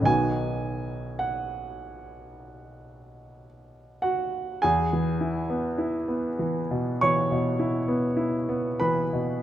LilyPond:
<<
  \new Staff \with { instrumentName = "Grand piano" } { \time 4/4 \key e \major \tempo 4 = 52 gis''4 fis''2 r8 <fis' fis''>8 | <gis' gis''>2 <cis'' cis'''>4. <b' b''>8 | }
  \new Staff \with { instrumentName = "Grand piano" } { \clef bass \time 4/4 \key e \major <b,, dis b fis'>1 | e,16 e16 e'16 b16 e'16 b16 e16 b,16 e16 b,16 e'16 b16 e'16 b16 e16 b,16 | }
>>